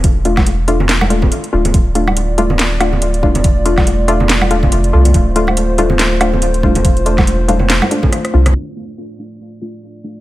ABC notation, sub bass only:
X:1
M:4/4
L:1/16
Q:"Swing 16ths" 1/4=141
K:Dm
V:1 name="Sub bass" clef=bass
E,,,8- E,,,2 D,,,2 z2 D,,,2 | D,,,12- D,,,3 E,,,- | E,,,8- E,,,2 D,,,2 F,,,2 C,,2 | z12 z3 E,,,- |
E,,,8- E,,, z4 z C,,2 | z16 |]